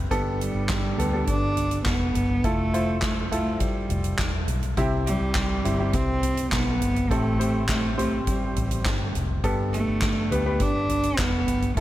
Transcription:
0.00 0.13 C4 medium
0.00 0.11 G4 medium
0.00 0.13 B4 medium
0.11 0.52 G1 loud
0.11 0.95 G2 medium
0.11 0.73 B3 medium
0.11 0.73 G4 medium
0.11 0.73 A4 loud
0.11 kick loud
0.11 closed hi-hat medium
0.40 1.24 G3 medium
0.40 closed hi-hat medium
0.55 0.95 G1 medium
0.69 kick loud
0.69 snare loud
0.69 clap medium
0.69 closed hi-hat medium
0.98 1.25 D2 medium
0.98 1.09 B3 medium
0.98 1.09 G4 medium
0.98 1.09 A4 medium
0.98 closed hi-hat medium
0.98 floor tom medium
1.13 1.95 B3 medium
1.13 1.96 G4 medium
1.13 1.96 A4 medium
1.27 1.82 G1 loud
1.27 1.82 D4 loud
1.27 kick medium
1.27 closed hi-hat medium
1.57 closed hi-hat medium
1.57 floor tom medium
1.71 closed hi-hat soft
1.86 2.13 F1 medium
1.86 2.46 B3 medium
1.86 kick loud
1.86 snare medium
1.86 clap medium
1.86 closed hi-hat medium
2.15 2.42 G1 medium
2.15 closed hi-hat medium
2.15 floor tom medium
2.29 floor tom medium
2.44 3.86 F1 loud
2.44 3.03 A3 loud
2.44 2.65 E4 medium
2.44 2.65 F4 medium
2.44 2.65 A4 medium
2.44 kick loud
2.44 closed hi-hat medium
2.74 3.15 E4 medium
2.74 3.15 F4 medium
2.74 3.15 C5 medium
2.74 closed hi-hat medium
3.02 3.30 A3 medium
3.02 kick loud
3.02 snare loud
3.02 clap medium
3.02 closed hi-hat medium
3.31 3.63 A3 medium
3.31 4.14 E4 medium
3.31 4.14 F4 medium
3.31 4.14 A4 medium
3.31 closed hi-hat medium
3.31 floor tom medium
3.60 4.48 G3 medium
3.60 kick loud
3.60 closed hi-hat medium
3.89 4.17 F1 medium
3.89 closed hi-hat medium
3.89 floor tom medium
4.04 closed hi-hat medium
4.19 4.46 E1 medium
4.19 kick loud
4.19 snare loud
4.19 clap medium
4.19 closed hi-hat medium
4.48 4.75 B1 medium
4.48 closed hi-hat medium
4.48 floor tom medium
4.63 closed hi-hat soft
4.63 floor tom medium
4.77 5.18 C2 loud
4.77 5.61 C3 medium
4.77 5.39 C4 medium
4.77 5.39 E4 medium
4.77 5.39 G4 medium
4.77 kick loud
4.77 closed hi-hat medium
5.07 5.96 G3 medium
5.07 closed hi-hat medium
5.21 5.62 C2 medium
5.35 kick loud
5.35 snare loud
5.35 clap medium
5.35 closed hi-hat medium
5.64 5.92 G1 medium
5.64 5.75 C4 medium
5.64 5.75 E4 medium
5.64 5.75 G4 medium
5.64 closed hi-hat medium
5.64 floor tom medium
5.79 6.62 C4 medium
5.79 6.62 E4 medium
5.79 6.62 G4 medium
5.93 6.48 C2 loud
5.93 6.52 C4 medium
5.93 kick loud
5.93 closed hi-hat medium
6.23 closed hi-hat medium
6.23 floor tom medium
6.37 closed hi-hat medium
6.52 6.79 B1 medium
6.52 7.13 B3 medium
6.52 kick loud
6.52 snare loud
6.52 clap medium
6.52 closed hi-hat medium
6.81 7.08 G1 medium
6.81 closed hi-hat medium
6.81 floor tom medium
6.96 closed hi-hat soft
6.96 floor tom medium
7.11 8.52 A1 medium
7.11 7.94 A2 medium
7.11 7.69 A3 medium
7.11 7.31 C4 medium
7.11 7.31 G4 medium
7.11 7.31 A4 medium
7.11 kick loud
7.11 closed hi-hat medium
7.39 7.81 C4 medium
7.39 7.81 G4 medium
7.39 7.81 C5 medium
7.39 closed hi-hat medium
7.69 7.96 A3 medium
7.69 kick loud
7.69 snare loud
7.69 clap medium
7.69 closed hi-hat medium
7.97 8.25 A3 medium
7.97 8.80 C4 medium
7.97 8.80 G4 medium
7.97 8.80 C5 medium
7.97 closed hi-hat medium
7.97 floor tom medium
8.27 9.11 G3 medium
8.27 kick medium
8.27 closed hi-hat medium
8.56 8.83 A1 medium
8.56 closed hi-hat medium
8.56 floor tom medium
8.71 closed hi-hat medium
8.85 9.13 G1 medium
8.85 kick loud
8.85 snare loud
8.85 clap medium
8.85 closed hi-hat medium
9.15 9.42 F1 medium
9.15 closed hi-hat medium
9.15 floor tom medium
9.29 floor tom medium
9.44 9.84 G1 loud
9.44 10.27 G2 medium
9.44 10.06 B3 medium
9.44 10.06 G4 medium
9.44 10.06 A4 medium
9.44 kick loud
9.44 closed hi-hat medium
9.73 10.63 A3 loud
9.73 closed hi-hat medium
9.88 10.28 G1 medium
10.02 kick loud
10.02 snare loud
10.02 clap medium
10.02 closed hi-hat medium
10.31 10.58 D2 medium
10.31 10.42 B3 medium
10.31 10.42 G4 medium
10.31 10.42 B4 medium
10.31 closed hi-hat medium
10.31 floor tom medium
10.46 11.28 B3 medium
10.46 11.28 G4 medium
10.46 11.29 B4 medium
10.60 11.15 G1 loud
10.60 11.22 D4 loud
10.60 kick medium
10.60 closed hi-hat medium
10.89 closed hi-hat medium
10.89 floor tom medium
11.03 closed hi-hat medium
11.18 11.46 F1 medium
11.18 11.78 B3 loud
11.18 kick loud
11.18 snare loud
11.18 clap medium
11.18 closed hi-hat medium
11.48 11.75 G1 medium
11.48 closed hi-hat medium
11.48 floor tom medium
11.62 closed hi-hat soft
11.62 floor tom medium
11.77 11.80 F1 loud
11.77 11.80 E4 medium
11.77 11.80 F4 medium
11.77 kick loud
11.77 closed hi-hat medium

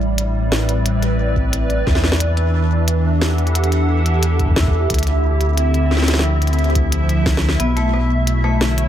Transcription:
0.00 1.83 A1 medium
0.00 1.87 A2 medium
0.00 1.87 G3 medium
0.00 0.25 D4 medium
0.00 0.25 E4 medium
0.00 8.88 E4 medium
0.00 3.08 D5 medium
0.00 8.88 E5 medium
0.18 closed hi-hat medium
0.38 1.87 C4 medium
0.38 3.08 B4 medium
0.52 snare loud
0.69 closed hi-hat medium
0.86 closed hi-hat medium
1.02 closed hi-hat soft
1.36 kick medium
1.53 closed hi-hat medium
1.70 closed hi-hat soft
1.87 4.87 E2 medium
1.87 4.90 E3 medium
1.87 kick loud
1.87 snare medium
1.95 snare medium
2.04 snare medium
2.12 snare loud
2.20 closed hi-hat medium
2.31 5.98 D4 medium
2.37 closed hi-hat soft
2.88 closed hi-hat medium
3.13 7.60 G4 medium
3.21 5.98 A4 medium
3.21 4.90 F#5 medium
3.21 snare loud
3.38 closed hi-hat soft
3.47 closed hi-hat soft
3.55 closed hi-hat medium
3.64 closed hi-hat soft
3.72 closed hi-hat soft
4.06 closed hi-hat medium
4.23 closed hi-hat medium
4.39 kick medium
4.39 closed hi-hat soft
4.45 kick medium
4.51 kick medium
4.56 kick medium
4.56 snare loud
4.62 kick medium
4.68 kick loud
4.90 7.56 D2 medium
4.90 7.60 D3 medium
4.90 kick medium
4.90 closed hi-hat medium
4.94 closed hi-hat medium
4.99 closed hi-hat soft
5.03 closed hi-hat soft
5.07 closed hi-hat soft
5.40 7.60 C4 medium
5.40 8.88 E5 medium
5.40 closed hi-hat soft
5.57 closed hi-hat medium
5.74 closed hi-hat soft
5.91 snare medium
5.97 snare medium
6.02 snare medium
6.08 7.60 F3 medium
6.08 snare medium
6.08 closed hi-hat medium
6.14 snare medium
6.19 snare loud
6.42 closed hi-hat soft
6.47 closed hi-hat soft
6.53 closed hi-hat soft
6.59 closed hi-hat soft
6.64 closed hi-hat soft
6.70 closed hi-hat soft
6.75 kick medium
6.75 closed hi-hat medium
6.92 closed hi-hat medium
7.09 closed hi-hat soft
7.26 kick loud
7.26 snare loud
7.37 snare medium
7.49 snare medium
7.60 8.88 B1 medium
7.60 8.88 B2 medium
7.60 7.70 B3 medium
7.60 closed hi-hat medium
7.77 7.92 A3 medium
7.77 closed hi-hat soft
7.94 8.00 B3 medium
7.94 cross-stick soft
8.11 8.88 A3 medium
8.27 closed hi-hat medium
8.44 8.54 A3 medium
8.44 cross-stick soft
8.54 8.88 D3 medium
8.61 8.67 A3 medium
8.61 snare loud
8.66 8.88 C#5 medium
8.78 closed hi-hat soft

